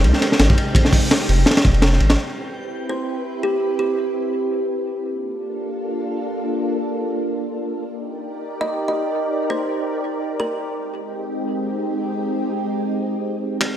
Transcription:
0.00 0.12 C2 loud
0.00 0.20 G#3 loud
0.00 0.20 C4 loud
0.00 0.20 D#4 loud
0.00 0.20 G4 loud
0.00 2.18 G4 medium
0.00 2.18 G5 medium
0.04 ride medium
0.13 snare soft
0.21 snare soft
0.21 ride medium
0.32 snare soft
0.39 0.48 G#1 loud
0.39 snare loud
0.39 ride medium
0.50 kick medium
0.58 ride medium
0.75 1.63 G#3 loud
0.75 1.63 C4 loud
0.75 1.63 D#4 loud
0.75 1.63 G4 loud
0.75 kick loud
0.75 ride medium
0.85 snare medium
0.93 kick loud
0.93 open hi-hat medium
1.11 snare loud
1.11 ride medium
1.21 snare soft
1.29 1.45 F1 medium
1.29 ride medium
1.46 snare medium
1.46 ride medium
1.51 snare loud
1.51 ride medium
1.57 snare loud
1.57 ride medium
1.65 1.99 F1 medium
1.65 kick medium
1.65 ride medium
1.74 ride soft
1.82 snare loud
1.82 ride medium
1.93 snare soft
2.00 2.16 G#1 medium
2.00 ride medium
2.10 snare loud
2.10 ride medium
2.18 5.02 C4 medium
2.18 5.02 E4 medium
2.18 5.02 G4 medium
2.18 5.02 B4 loud
2.89 3.11 C5 medium
3.43 3.65 G4 medium
3.79 4.29 G4 medium
5.04 7.88 A#3 medium
5.04 7.88 D4 medium
5.04 7.88 F4 medium
5.04 7.88 A4 loud
7.90 10.73 D#4 medium
7.90 10.73 G4 medium
7.90 10.73 A#4 medium
7.90 10.73 D5 loud
8.61 8.83 D#5 medium
8.88 9.14 D#5 medium
9.50 9.72 C5 medium
10.40 10.75 A#4 medium
10.75 13.59 G#3 medium
10.75 13.59 C4 medium
10.75 13.59 D#4 medium
10.75 13.59 G4 loud
13.60 13.77 C4 loud
13.60 13.77 E4 medium
13.60 13.77 G4 loud
13.60 13.77 B4 loud
13.60 kick loud
13.60 ride medium

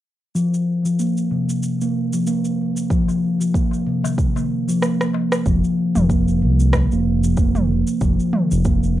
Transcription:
0.35 0.84 F3 medium
0.35 shaker soft
0.54 shaker soft
0.85 0.98 F3 medium
0.85 shaker medium
0.99 1.17 A#3 medium
0.99 shaker soft
1.17 shaker soft
1.31 1.48 C3 medium
1.49 shaker medium
1.63 shaker soft
1.81 1.95 A#3 medium
1.81 shaker soft
2.13 2.21 F3 medium
2.13 shaker medium
2.27 2.44 A#3 medium
2.27 shaker soft
2.45 shaker soft
2.77 shaker medium
2.90 3.39 F3 medium
2.90 kick loud
2.90 shaker medium
3.08 darbuka ka soft
3.08 shaker soft
3.40 3.53 F3 medium
3.40 shaker medium
3.54 3.72 A#3 medium
3.54 kick medium
3.54 shaker medium
3.71 darbuka ka soft
3.71 shaker soft
3.86 4.04 C3 medium
4.04 darbuka tek medium
4.04 darbuka dum medium
4.04 shaker medium
4.18 kick medium
4.18 shaker medium
4.36 4.50 A#3 medium
4.36 darbuka tek medium
4.36 darbuka dum loud
4.36 shaker soft
4.68 4.76 F3 medium
4.68 shaker medium
4.82 4.99 A#3 medium
4.82 cross-stick medium
4.82 shaker medium
5.01 cross-stick medium
5.01 shaker soft
5.13 darbuka ka soft
5.13 darbuka tek medium
5.32 cross-stick medium
5.32 shaker medium
5.46 5.61 F1 loud
5.46 5.94 F3 loud
5.46 kick medium
5.46 shaker medium
5.64 shaker soft
5.96 6.43 F1 medium
5.96 6.09 F3 medium
5.96 mid tom medium
5.96 shaker medium
6.10 6.27 A#3 medium
6.10 kick medium
6.10 shaker medium
6.28 shaker soft
6.42 6.87 C2 loud
6.42 6.59 C3 medium
6.60 shaker medium
6.73 kick medium
6.73 cross-stick medium
6.73 mid tom medium
6.73 shaker soft
6.92 7.34 F1 medium
6.92 7.05 A#3 medium
6.92 shaker soft
7.24 7.32 F3 medium
7.24 shaker medium
7.37 7.83 F1 medium
7.37 7.55 A#3 medium
7.37 kick loud
7.37 shaker medium
7.55 mid tom medium
7.55 shaker soft
7.87 shaker medium
8.01 8.16 F1 loud
8.01 8.50 F3 medium
8.01 kick loud
8.01 shaker medium
8.20 shaker soft
8.33 mid tom medium
8.51 8.99 F1 medium
8.51 8.64 F3 medium
8.51 shaker medium
8.65 8.82 A#3 medium
8.65 kick loud
8.65 shaker medium
8.83 shaker soft

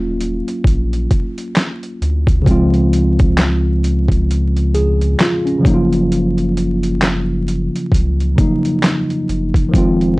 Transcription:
0.00 0.42 D#1 loud
0.00 2.42 F#3 medium
0.00 2.43 A#3 medium
0.00 2.44 C#4 medium
0.00 2.48 F4 medium
0.21 closed hi-hat medium
0.48 closed hi-hat soft
0.64 1.08 A#1 medium
0.64 kick medium
0.64 closed hi-hat medium
0.93 closed hi-hat soft
1.11 kick medium
1.11 closed hi-hat medium
1.38 closed hi-hat soft
1.56 snare loud
1.56 clap medium
1.56 closed hi-hat medium
1.83 closed hi-hat soft
2.01 2.44 D2 medium
2.01 closed hi-hat medium
2.27 kick medium
2.27 closed hi-hat soft
2.42 5.57 C#3 medium
2.42 5.60 F3 medium
2.46 5.15 C#2 loud
2.46 5.61 G#3 medium
2.46 4.71 C4 medium
2.46 kick loud
2.46 closed hi-hat medium
2.51 4.72 F4 medium
2.74 closed hi-hat soft
2.93 closed hi-hat medium
3.19 kick medium
3.19 closed hi-hat soft
3.38 snare loud
3.38 clap medium
3.38 closed hi-hat medium
3.84 closed hi-hat medium
4.08 kick medium
4.08 closed hi-hat medium
4.31 closed hi-hat medium
4.57 closed hi-hat soft
4.74 5.17 G#4 medium
4.74 closed hi-hat medium
5.01 closed hi-hat medium
5.20 5.45 F4 medium
5.20 snare loud
5.20 clap medium
5.20 closed hi-hat medium
5.45 5.89 C#4 medium
5.45 closed hi-hat soft
5.59 8.30 C#3 medium
5.59 8.32 F3 medium
5.63 7.69 F#1 medium
5.63 8.33 F#3 medium
5.63 8.34 A#3 medium
5.63 kick loud
5.63 closed hi-hat medium
5.67 5.74 D#4 medium
5.74 8.38 F4 medium
5.93 closed hi-hat soft
6.12 closed hi-hat medium
6.38 closed hi-hat soft
6.57 closed hi-hat medium
6.83 closed hi-hat medium
7.02 snare loud
7.02 clap medium
7.02 closed hi-hat medium
7.48 closed hi-hat medium
7.76 closed hi-hat soft
7.92 8.35 C#2 loud
7.92 kick medium
7.92 closed hi-hat medium
8.20 closed hi-hat soft
8.36 9.73 C#3 medium
8.36 9.70 F3 medium
8.36 9.74 F#3 medium
8.36 9.75 A#3 medium
8.36 kick loud
8.36 closed hi-hat medium
8.40 9.75 D#4 medium
8.65 closed hi-hat soft
8.83 snare loud
8.83 clap medium
8.83 closed hi-hat medium
9.10 closed hi-hat soft
9.29 9.72 F#1 medium
9.29 closed hi-hat medium
9.54 kick medium
9.54 closed hi-hat medium
9.69 10.19 D#3 medium
9.69 10.19 F3 medium
9.74 10.19 F1 loud
9.74 10.19 G#3 medium
9.74 10.19 C4 medium
9.74 kick loud
9.74 closed hi-hat medium
9.78 10.19 F4 medium
10.01 closed hi-hat soft

